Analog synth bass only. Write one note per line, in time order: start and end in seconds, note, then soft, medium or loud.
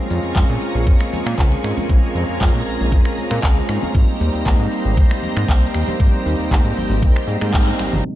0.11 0.20 F2 medium
0.24 0.33 F2 soft
0.35 0.45 F2 medium
0.49 0.58 A#2 medium
0.75 0.88 A#1 medium
0.87 0.96 F2 loud
1.26 1.35 A#2 loud
1.38 1.56 C#2 medium
1.64 1.73 G#2 medium
1.89 1.99 A#1 loud
2.15 2.24 F2 medium
2.29 2.39 F2 soft
2.41 2.50 F2 medium
2.54 2.63 A#2 medium
2.67 2.78 A#1 soft
2.81 2.94 A#1 medium
2.92 3.01 F2 loud
3.31 3.40 A#2 loud
3.43 3.61 C#2 medium
3.69 3.78 G#2 medium
3.95 4.04 G#1 loud
4.21 4.30 D#2 medium
4.34 4.44 D#2 soft
4.46 4.55 D#2 medium
4.59 4.68 G#2 medium
4.85 4.99 G#1 medium
4.97 5.07 D#2 loud
5.37 5.45 G#2 loud
5.49 5.67 C2 medium
5.75 5.84 D#2 medium
6.00 6.09 G#1 medium
6.26 6.35 D#2 medium
6.39 6.49 D#2 soft
6.51 6.61 D#2 medium
6.64 6.73 G#2 medium
6.77 6.88 G#1 soft
6.90 7.04 G#1 medium
7.03 7.12 D#2 loud
7.27 7.37 G#2 medium
7.42 7.73 G#2 medium
7.80 7.90 G#1 soft
7.93 8.02 G#1 loud